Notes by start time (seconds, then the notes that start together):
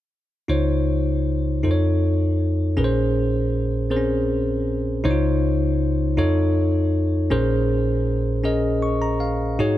0.48 C#2 C#3 D#4 F4 C5 C#5
1.63 F2 D#4 F4 A4 C5
1.71 C#5
2.77 A#1 A#2 C#4 G#4 A#4 B4
2.84 C5
3.90 C4 G#4 A#4 C5
3.97 C#4
5.04 C#2 C#3 D#4 E4 C5 C#5
5.11 F4
6.17 F2 D#4 F4 A4 C#5
7.30 A#1 A#2 C#4 G#4 A#4 C5
8.44 C#4 G#4 A#4 D#5
8.82 C#6
9.02 A#5
9.20 F5
9.59 G#2 D#4 F#4 G#4 C#5